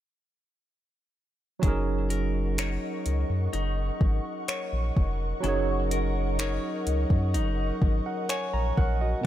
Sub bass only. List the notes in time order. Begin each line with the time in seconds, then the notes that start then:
1.63 F#1
3.06 C#2
3.30 F#2
3.54 F#1
4.01 G#1
4.73 A#1
4.97 F1
5.44 F#1
6.87 C#2
7.10 F#2
7.34 F#1
7.82 G#1
8.53 A#1
8.78 A#1